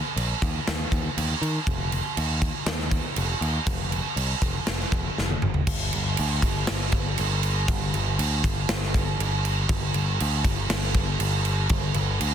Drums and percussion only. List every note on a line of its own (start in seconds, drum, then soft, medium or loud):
0.17 crash medium
0.42 kick medium
0.42 crash medium
0.67 snare loud
0.67 crash medium
0.92 kick medium
0.92 crash medium
1.18 crash medium
1.43 crash medium
1.67 kick loud
1.67 crash medium
1.92 crash medium
2.17 crash medium
2.42 kick medium
2.42 crash medium
2.66 snare loud
2.66 crash medium
2.80 snare soft
2.91 kick medium
2.91 crash medium
3.16 crash medium
3.42 crash medium
3.67 kick loud
3.67 crash medium
3.92 crash medium
4.17 crash medium
4.42 kick medium
4.42 crash medium
4.67 snare loud
4.67 crash medium
4.80 snare soft
4.92 kick medium
4.92 crash medium
5.18 snare medium
5.30 high tom medium
5.42 mid tom medium
5.54 floor tom medium
5.67 kick loud
5.67 crash loud
5.67 crash medium
5.93 crash medium
6.17 crash medium
6.42 kick medium
6.42 crash medium
6.67 snare loud
6.67 crash medium
6.92 kick medium
6.92 crash medium
7.18 crash medium
7.43 crash medium
7.68 kick loud
7.68 crash medium
7.94 crash medium
8.19 crash medium
8.44 kick medium
8.44 crash medium
8.69 snare loud
8.69 crash medium
8.83 snare soft
8.94 kick medium
8.94 crash medium
9.20 crash medium
9.45 crash medium
9.69 kick loud
9.69 crash medium
9.94 crash medium
10.20 crash medium
10.44 kick medium
10.44 crash medium
10.70 snare loud
10.70 crash medium
10.83 snare soft
10.94 kick medium
10.94 crash medium
11.20 crash medium
11.45 crash medium
11.69 kick loud
11.69 crash medium
11.94 crash medium
12.21 crash medium